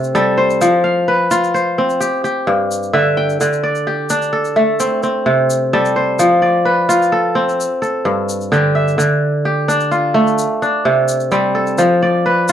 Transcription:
Already playing: C3 A3 C4 D4
0.03 shaker
0.15 G3 A4, shaker
0.38 C5
0.50 shaker
0.61 F3, shaker
0.84 F5
1.08 B4
1.31 F4, shaker
1.44 shaker
1.54 C5, shaker
1.78 C4
1.90 shaker
2.00 G4, shaker
2.24 G4, shaker
2.47 G2
2.71 shaker
2.83 shaker
2.93 D3 E5
3.17 G5
3.30 shaker
3.41 D3, shaker
3.53 shaker
3.63 D5
3.75 shaker
3.87 G4
4.10 D4, shaker
4.22 shaker
4.33 A4
4.45 shaker
4.56 A3
4.80 C4, shaker
5.03 C4, shaker
5.26 C3
5.50 shaker
5.73 G3 A4
5.85 shaker
5.96 C5
6.19 F3, shaker
6.42 D5
6.65 B4
6.89 F4, shaker
7.02 shaker
7.12 A4
7.35 C4
7.49 shaker
7.60 shaker
7.82 A4, shaker
8.05 G2
8.29 shaker
8.41 shaker
8.52 D3 G4, shaker
8.75 E5
8.88 shaker
8.98 D3, shaker
9.45 G4
9.68 D4, shaker
9.80 shaker
9.91 F4, shaker
10.14 A3
10.27 shaker
10.38 shaker
10.62 D4, shaker
10.85 C3
11.08 shaker
11.20 shaker
11.32 G3 C4, shaker
11.55 A4
11.67 shaker
11.78 F3, shaker
12.03 D5
12.26 B4
12.48 shaker

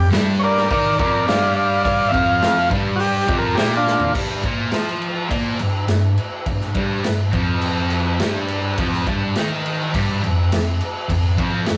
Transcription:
0.11 G2 G3, snare, open hi-hat
0.39 C#5
0.43 A#4 D5
0.57 snare
0.69 D#3 D#4 A#4 D5, kick, open hi-hat
0.99 F2 F3 A#4 D5, kick
1.27 G2 G3 D5 F5, snare, open hi-hat
1.56 D5 F5
1.84 D5 F5, kick, open hi-hat
2.09 F2 F3 E5
2.13 F5, kick
2.42 snare, open hi-hat
2.70 G2 G3, kick
2.96 F#4, open hi-hat
3.00 G4
3.27 F2 F3, kick
3.38 A#4
3.55 A#2 A#3 G4, snare, open hi-hat
3.77 D4 F4
3.87 snare
4.00 floor tom
4.13 G2 G3, kick, crash
4.43 A#2 A#3, kick, crash
4.71 F3 F4, snare, crash
4.88 snare
5.02 crash
5.29 A#2 A#3, kick, crash
5.59 G2, crash
5.88 G2, snare, crash
6.18 crash
6.46 G2, kick, crash
6.61 snare
6.74 G2 G3, kick, crash
7.04 G2, snare, crash
7.33 F2 F3, kick, crash
7.61 crash
7.90 crash
8.20 G2 G3, snare, crash
8.48 crash
8.78 F2 F3, kick, crash
8.93 snare
9.07 G2 G3, kick, crash
9.36 D#3 D#4, snare, crash
9.66 crash
9.93 G2 G3, kick, crash
10.23 F2, crash
10.52 F2, snare, crash
10.81 crash
11.09 F2, kick, crash
11.37 F2 F3, kick, crash
11.66 F2, snare, crash

